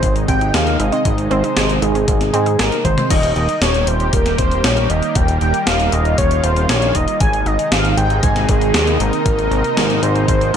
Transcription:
Already playing: analog synth pad C3 D#3 G#3 D#4, analog synth lead C5
0.03 analog synth bass G#1, synth arpeggio sound G#3, kick, closed hi-hat
0.16 closed hi-hat
0.28 analog synth bass G#1, synth arpeggio sound C4, analog synth lead G5, kick, closed hi-hat
0.41 synth arpeggio sound D#4, closed hi-hat
0.54 analog synth bass D#2, synth arpeggio sound G#4, analog synth lead F5, snare, closed hi-hat
0.67 closed hi-hat
0.79 analog synth bass G#1, synth arpeggio sound D#4, closed hi-hat
0.92 synth arpeggio sound C4, analog synth lead D#5, closed hi-hat
1.05 analog synth bass G#1, synth arpeggio sound G#3, kick, closed hi-hat
1.18 closed hi-hat
1.30 analog synth bass G#1, synth arpeggio sound C4, analog synth lead C5, closed hi-hat
1.44 synth arpeggio sound D#4, closed hi-hat
1.57 analog synth bass G#1, synth arpeggio sound G#4, snare, closed hi-hat
1.69 closed hi-hat
1.82 analog synth bass G#1, synth arpeggio sound D#4, analog synth lead G#4, closed hi-hat
1.95 synth arpeggio sound C4, closed hi-hat
2.08 analog synth bass G#1, synth arpeggio sound G#3, kick, closed hi-hat
2.21 snare, closed hi-hat
2.33 analog synth bass G#2, synth arpeggio sound C4, analog synth lead G#4, closed hi-hat
2.46 synth arpeggio sound D#4, closed hi-hat
2.59 analog synth bass G#1, synth arpeggio sound G#4, analog synth lead A#4, snare, closed hi-hat
2.72 closed hi-hat
2.85 analog synth bass G#1, synth arpeggio sound D#4, analog synth lead C5, kick, closed hi-hat, high tom
2.98 synth arpeggio sound C4, closed hi-hat, mid tom
3.10 analog synth bass D#1, analog synth pad D#3 G3 A#3 G4, analog synth lead D#5, kick, closed hi-hat, crash
3.23 closed hi-hat
3.36 analog synth bass D#1, analog synth lead D#5, closed hi-hat
3.49 closed hi-hat
3.62 analog synth bass D#1, analog synth lead C#5, snare, closed hi-hat
3.74 closed hi-hat
3.87 analog synth bass D#1, analog synth lead C5, closed hi-hat
4.00 closed hi-hat
4.13 analog synth bass D#1, analog synth lead A#4, kick, closed hi-hat
4.26 snare, closed hi-hat
4.38 analog synth bass D#1, analog synth lead C5, kick, closed hi-hat
4.51 closed hi-hat
4.64 analog synth bass A#1, analog synth lead C#5, snare, closed hi-hat
4.77 closed hi-hat
4.90 analog synth bass D#1, analog synth lead D#5, closed hi-hat
5.03 closed hi-hat
5.15 analog synth bass D#1, analog synth pad F4, analog synth lead G5, kick, closed hi-hat
5.28 closed hi-hat
5.41 analog synth bass D#1, analog synth lead G5, closed hi-hat
5.54 closed hi-hat
5.67 analog synth bass D#1, analog synth lead F5, snare, closed hi-hat
5.80 closed hi-hat
5.92 analog synth bass D#1, analog synth lead D#5, closed hi-hat
6.05 closed hi-hat
6.18 analog synth bass D#1, analog synth lead C#5, kick, closed hi-hat
6.31 closed hi-hat
6.44 analog synth bass D#1, analog synth lead C5, closed hi-hat
6.56 closed hi-hat
6.69 analog synth bass A#1, analog synth lead C#5, snare, closed hi-hat
6.82 closed hi-hat
6.95 analog synth bass D#1, analog synth lead D#5, kick, closed hi-hat
7.08 closed hi-hat
7.20 analog synth bass G#1, analog synth pad C3 G#3 D#4, analog synth lead G#5, kick, closed hi-hat
7.33 closed hi-hat
7.46 analog synth bass G#1, analog synth lead D#5, closed hi-hat
7.59 closed hi-hat
7.72 analog synth bass G#1, analog synth lead F5, snare, closed hi-hat
7.85 closed hi-hat
7.97 analog synth bass G#1, analog synth lead G5, closed hi-hat
8.10 closed hi-hat
8.23 analog synth bass G#1, analog synth lead G#5, kick, closed hi-hat
8.36 snare, closed hi-hat
8.49 analog synth bass G#1, analog synth lead G#4, kick, closed hi-hat
8.61 closed hi-hat
8.74 analog synth bass D#2, snare, closed hi-hat
8.87 closed hi-hat
9.00 analog synth bass G#1, analog synth lead A#4, closed hi-hat
9.13 closed hi-hat
9.26 analog synth bass G#1, analog synth pad A#3, kick, closed hi-hat
9.39 closed hi-hat
9.51 analog synth bass G#1, closed hi-hat
9.64 closed hi-hat
9.77 analog synth bass G#1, snare, closed hi-hat
9.90 closed hi-hat
10.03 analog synth bass G#1, analog synth lead C5, closed hi-hat
10.15 closed hi-hat
10.28 analog synth bass G#1, analog synth lead C5, kick, closed hi-hat
10.41 closed hi-hat

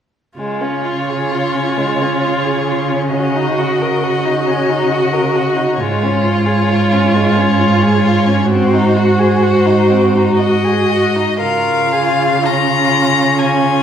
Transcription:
0.38 cello C#3, violin G#3 C#5, viola F4
0.61 violin C#4
0.84 violin F4
1.09 violin G#4
1.32 violin F4
1.55 violin C#4
1.78 violin G#3
2.01 violin C#4
2.24 violin F4
2.45 violin G#4
2.68 violin F4
2.90 violin C#4
3.13 violin C#4 D#5, viola F#4
3.35 violin D#4
3.58 violin F#4
3.82 violin A#4
4.03 violin F#4
4.25 violin D#4
4.48 violin C#4
4.70 violin D#4
4.92 violin F#4
5.13 violin A#4
5.36 violin F#4
5.57 violin D#4
5.80 cello G#2, violin G#3 C#5, viola F4
6.03 violin C#4
6.24 violin F4
6.46 violin G#4
6.70 violin F4
6.93 violin C#4
7.15 violin G#3
7.37 violin C#4
7.60 violin F4
7.82 violin G#4
8.04 violin F4
8.27 violin C#4
8.50 violin C4 C5, viola F#4
8.73 violin D#4
8.97 violin F#4
9.19 violin G#4
9.43 violin F#4
9.66 violin D#4
9.91 violin C4
10.15 violin D#4
10.39 violin F#4 D#5
10.65 violin G#4
10.90 violin F#4
11.16 violin D#4
11.40 cello C#3, viola F4, violin A#4 F5
11.92 violin G#4
12.44 viola C#4, violin F4 A#5
13.38 violin F4 G#5

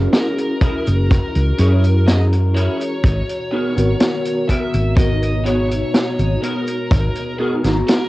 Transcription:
Already playing: ambient pad E3 G#3 F#4 A#5, tine electric piano C#4 E4 G#4 A#4
0.13 lead electric guitar A#4, snare, closed hi-hat, cabasa
0.38 closed hi-hat, cabasa
0.61 clean electric guitar E4 F#4 G#4 A#4, kick, closed hi-hat
0.86 fingered electric bass F#1, closed hi-hat, cabasa
1.11 kick, closed hi-hat, cabasa
1.35 fingered electric bass C#2, closed hi-hat, cabasa
1.58 fingered electric bass F#2, tine electric piano C#4 E4 G#4 A#4, clean electric guitar E4 F#4 G#4 C#5, closed hi-hat
1.84 closed hi-hat, cabasa
2.07 lead electric guitar D#5, snare, closed hi-hat, cabasa
2.33 closed hi-hat, cabasa
2.55 clean electric guitar E4 F#4 G#4 A#4, lead electric guitar C#5, closed hi-hat
2.81 closed hi-hat, cabasa
3.04 fingered electric bass G#1, ambient pad B2, kick, closed hi-hat, cabasa
3.29 closed hi-hat, cabasa
3.51 clean electric guitar B3 F#4 G#4 A#4, tine electric piano B3 D#4 F#4 A#4, lead electric guitar C#5
3.76 fingered electric bass G#1, tine electric piano D#3 B3 F#4 A#4, closed hi-hat, cabasa
4.00 snare, closed hi-hat, cabasa
4.25 closed hi-hat, cabasa
4.48 clean electric guitar B3 F#4 G#4 A#4, lead electric guitar E5, kick, closed hi-hat
4.74 fingered electric bass G#1, closed hi-hat, cabasa
4.97 tine electric piano B3 D#4 F#4 A#4, lead electric guitar D#5, kick, closed hi-hat, cabasa
5.22 closed hi-hat, cabasa
5.44 tine electric piano B3 D#4 F#4 C#5, clean electric guitar B3 F#4 G#4 C#5, lead electric guitar C#5, closed hi-hat
5.71 closed hi-hat, cabasa
5.94 snare, closed hi-hat, cabasa
6.19 fingered electric bass G#1, closed hi-hat, cabasa
6.42 clean electric guitar B3 F#4 G#4 A#4, lead electric guitar A#4, closed hi-hat
6.67 closed hi-hat, cabasa
6.91 fingered electric bass G#1, ambient pad G#4, kick, closed hi-hat, cabasa
7.15 closed hi-hat, cabasa
7.39 clean electric guitar B3 F#4 G#4 A#4, tine electric piano B3 D#4 F#4 A#4, lead electric guitar G#4
7.63 fingered electric bass G#1, tine electric piano B3 D#4 F#4 A#5, snare, closed hi-hat, cabasa
7.87 lead electric guitar A#4, snare, closed hi-hat, cabasa

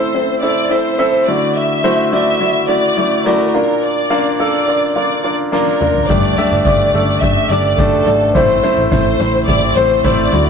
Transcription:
Already playing: grand piano A2 C4 E4 A4 E5, violin section C5
0.15 grand piano C4 E4 A4 E5
0.42 grand piano C4 E4 A4 E5, violin section D5
0.70 grand piano C4 E4 A4 E5, violin section C5
0.98 grand piano C4 E4 A4 E5
1.27 grand piano D3 A3 E4 F#4 D5, violin section D5
1.56 violin section E5
1.84 grand piano A3 E4 F#4 C5
2.12 grand piano A3 E4 F#4 D5, violin section E5
2.40 grand piano A3 E4 F#4 D5
2.68 grand piano A3 E4 F#4 D5, violin section D5
2.97 grand piano A3 E4 F#4 D5
3.24 grand piano A3 E4 F#4 D5, violin section A#4
3.54 grand piano A#2 A#3 D4 F4 D5
3.82 violin section D5
4.10 grand piano A#3 D4 F4 D5
4.38 grand piano A#3 D4 F4 A4, violin section D5
4.68 grand piano A#3 D4 F4 D5
4.95 grand piano A#3 D4 F4 D5, violin section D5
5.23 grand piano A#3 D4 F4 D5, violin section D5
5.51 grand piano A#3 D4 F4 D5, violin section A#4, snare
5.81 grand piano A#3 D4 F4 D5, mid tom
5.95 floor tom
6.06 fingered electric bass G1, grand piano G2 A3 D4 G4 D5, violin section D5, kick, closed hi-hat
6.37 grand piano A3 D4 G4 E5, closed hi-hat
6.51 fingered electric bass G1
6.64 fingered electric bass G1, grand piano A3 D4 G4 D5, violin section D5, kick, closed hi-hat
6.94 fingered electric bass G1, grand piano A3 D4 G4 A4, closed hi-hat
7.20 fingered electric bass G1, grand piano A3 D4 G4 D5, violin section E5, kick, closed hi-hat
7.48 fingered electric bass G1, grand piano A3 D4 G4 D5, violin section D5, closed hi-hat
7.77 fingered electric bass G1, grand piano A3 D4 G4 D5, violin section A4, kick, closed hi-hat
8.06 fingered electric bass G#1, grand piano A3 D4 G4 D5, closed hi-hat
8.34 fingered electric bass A1, grand piano A2 A3 C4 E4 C5, violin section C5, kick, closed hi-hat
8.63 grand piano A3 C4 E4 C5, closed hi-hat
8.77 fingered electric bass A1
8.90 fingered electric bass A1, grand piano A3 C4 E4 C5, violin section C5, kick, closed hi-hat
9.19 fingered electric bass A1, grand piano A3 C4 E4 C5, closed hi-hat
9.47 fingered electric bass A1, grand piano A3 C4 E4 G4, violin section D5, kick, closed hi-hat
9.76 fingered electric bass A1, grand piano A3 C4 E4 C5, violin section C5, closed hi-hat
10.04 fingered electric bass A1, grand piano A3 C4 E4 C5, violin section D5, kick, closed hi-hat
10.32 fingered electric bass D2, grand piano D3 A3 E4 F#4 D5, closed hi-hat

